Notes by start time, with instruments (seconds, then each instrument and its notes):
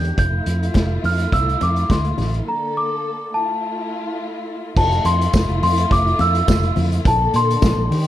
Already playing: fingered electric bass E2, string section D#3 D4 G4, celesta G6
0.04 closed hi-hat
0.18 fingered electric bass F1, string section A3 E4 F4, celesta G6, kick, closed hi-hat
0.46 fingered electric bass F2, closed hi-hat
0.63 closed hi-hat
0.74 fingered electric bass F1, kick, snare, closed hi-hat, high conga
1.04 fingered electric bass F2, celesta F6, open hi-hat, muted conga
1.19 closed hi-hat
1.32 fingered electric bass C2, celesta E6, kick, closed hi-hat, muted conga
1.49 closed hi-hat
1.61 fingered electric bass F2, celesta D6, closed hi-hat, muted conga
1.76 closed hi-hat
1.90 fingered electric bass D2, celesta C6, kick, snare, closed hi-hat, high conga
2.05 closed hi-hat
2.18 fingered electric bass A1, snare, open hi-hat, high conga
2.34 closed hi-hat
2.47 string section D3 A#3 A4, celesta A#5
2.77 celesta D6
3.33 string section A3 E4 F4, celesta A5
4.76 fingered electric bass F1, string section A3 E4 F4, celesta A5, kick, crash
4.91 closed hi-hat
5.05 fingered electric bass F2, celesta C6, closed hi-hat, muted conga
5.21 closed hi-hat
5.33 fingered electric bass F1, kick, snare, tambourine, high conga
5.48 fingered electric bass F1, closed hi-hat
5.63 fingered electric bass F2, celesta C6, open hi-hat, muted conga
5.78 closed hi-hat
5.91 fingered electric bass F1, celesta D6, kick, closed hi-hat, muted conga
6.07 closed hi-hat
6.19 fingered electric bass F2, celesta E6, closed hi-hat, muted conga
6.35 closed hi-hat
6.48 fingered electric bass F1, kick, snare, tambourine, high conga
6.63 closed hi-hat
6.76 fingered electric bass F2, open hi-hat, high conga
6.92 closed hi-hat
7.05 fingered electric bass A#1, string section D3 A#3 A4, celesta A5, kick, closed hi-hat
7.34 fingered electric bass A#2, celesta C6, closed hi-hat, muted conga
7.50 closed hi-hat
7.62 fingered electric bass A#1, kick, snare, tambourine, high conga
7.77 fingered electric bass A#1
7.91 fingered electric bass D#3, string section D#3 D4 G4, open hi-hat, muted conga